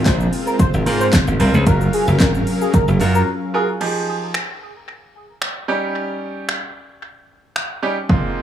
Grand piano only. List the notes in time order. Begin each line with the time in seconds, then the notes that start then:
0.86 C4 F4 A#4
1.40 C4 F4 A#4
1.66 F4 F#4 A#4
3.00 F4 F#4 A#4
3.54 F4 F#4 A#4
3.81 F3 D#4 G4 G#4
5.68 G3 C#4 D#4 G4
7.82 G3 C#4 D#4 G4
8.09 G#2 A#3 C4 F4